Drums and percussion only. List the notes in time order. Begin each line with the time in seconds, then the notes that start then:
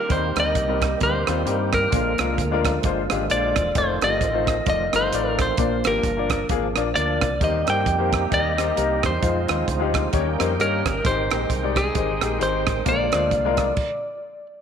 0.10 kick, closed hi-hat
0.36 cross-stick, closed hi-hat
0.55 kick, closed hi-hat
0.82 kick, cross-stick, closed hi-hat
1.00 kick, closed hi-hat
1.27 cross-stick, closed hi-hat
1.47 closed hi-hat
1.73 kick, cross-stick, closed hi-hat
1.92 kick, closed hi-hat
2.18 cross-stick, closed hi-hat
2.38 kick, closed hi-hat
2.65 kick, cross-stick, closed hi-hat
2.83 kick, closed hi-hat
3.10 cross-stick, closed hi-hat
3.30 closed hi-hat
3.56 kick, cross-stick, closed hi-hat
3.75 kick, closed hi-hat
4.01 cross-stick, closed hi-hat
4.21 kick, closed hi-hat
4.47 kick, cross-stick, closed hi-hat
4.66 kick, closed hi-hat
4.93 cross-stick, closed hi-hat
5.13 closed hi-hat
5.39 kick, cross-stick, closed hi-hat
5.57 kick, closed hi-hat
5.84 cross-stick, closed hi-hat
6.03 kick, closed hi-hat
6.30 kick, cross-stick, closed hi-hat
6.49 kick, closed hi-hat
6.76 cross-stick, closed hi-hat
6.96 closed hi-hat
7.21 kick, cross-stick, closed hi-hat
7.41 kick, closed hi-hat
7.67 cross-stick, closed hi-hat
7.86 kick, closed hi-hat
8.13 kick, cross-stick, closed hi-hat
8.32 kick, closed hi-hat
8.58 cross-stick, closed hi-hat
8.77 closed hi-hat
9.03 kick, cross-stick, closed hi-hat
9.23 kick, closed hi-hat
9.48 cross-stick, closed hi-hat
9.68 kick, closed hi-hat
9.94 kick, cross-stick, closed hi-hat
10.13 kick, closed hi-hat
10.40 cross-stick, closed hi-hat
10.60 closed hi-hat
10.86 kick, cross-stick, closed hi-hat
11.05 kick, closed hi-hat
11.31 cross-stick, closed hi-hat
11.50 kick, closed hi-hat
11.76 kick, cross-stick, closed hi-hat
11.95 kick, closed hi-hat
12.21 cross-stick, closed hi-hat
12.41 closed hi-hat
12.67 kick, cross-stick, closed hi-hat
12.86 kick, closed hi-hat
13.12 cross-stick, closed hi-hat
13.31 kick, closed hi-hat
13.57 kick, cross-stick, closed hi-hat
13.77 kick, crash